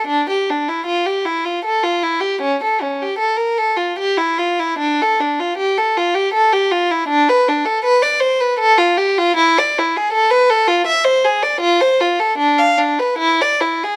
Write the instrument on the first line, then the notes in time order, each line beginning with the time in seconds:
violin
0.07 D4
0.29 G4
0.50 D4
0.68 E4
0.86 F4
1.06 G4
1.25 E4
1.45 F4
1.65 A4
1.83 F4
2.03 E4
2.20 G4
2.41 C#4
2.63 A4
2.82 C#4
3.02 G4
3.18 A4
3.37 A#4
3.58 A4
3.77 F4
3.98 G4
4.17 E4
4.39 F4
4.59 E4
4.78 D4
5.02 A4
5.20 D4
5.40 F4
5.57 G4
5.78 A4
5.97 F4
6.14 G4
6.33 A4
6.53 G4
6.71 F4
6.91 E4
7.08 D4
7.29 B4
7.48 D4
7.65 A4
7.84 B4
8.02 D5
8.20 C5
8.41 B4
8.59 A4
8.78 F4
8.97 G4
9.18 F4
9.36 E4
9.58 D5
9.78 E4
9.96 G#4
10.12 A4
10.31 B4
10.50 A4
10.67 F4
10.86 E5
11.05 C5
11.24 G#4
11.43 D5
11.60 F4
11.81 C5
12.00 F4
12.20 A4
12.38 D4
12.58 F5
12.78 D4
12.99 B4
13.18 E4
13.41 D5
13.61 E4
13.83 G#4